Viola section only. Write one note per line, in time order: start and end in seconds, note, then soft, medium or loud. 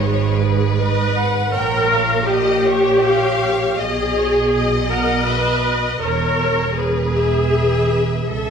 0.00 0.75 G#4 medium
0.75 1.53 B4 loud
1.52 2.26 A#4 loud
2.27 3.79 G4 loud
3.78 4.89 G#4 loud
4.89 5.26 A#4 loud
5.26 6.01 B4 loud
6.00 6.75 A#4 loud
6.76 8.30 G#4 loud
8.30 8.50 A4 loud